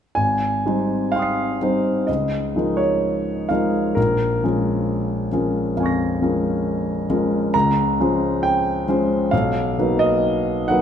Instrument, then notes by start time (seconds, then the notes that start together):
grand piano
0.15 G#1 G#5
0.66 G3 C4 D#4 C5
1.12 F5 G5
1.16 C6 D#6
1.22 C7
1.62 G3 C4 D#4 C5
2.07 C#2 D#5
2.56 F3 G#3 D#4 A#4
2.77 C#5
3.49 F3 G#3 D#4 A#4 F5
3.95 A#1 A#4
4.43 F3 G#3 C#4 A#4
5.32 F3 G#3 C#4 A#4
5.77 F2 F5 G#5
5.83 C#6 A#6
6.22 F3 G#3 C#4 A#4
7.10 F3 G#3 C#4 A#4
7.54 C#2 A#5
8.00 F3 G#3 C#4 C5
8.43 G5
8.88 F3 G#3 C#4 C5
9.31 B1 F5
9.78 F#3 A#3 D#4 B4
9.99 D#5
10.68 F#3 A#3 D#4 B4 F#5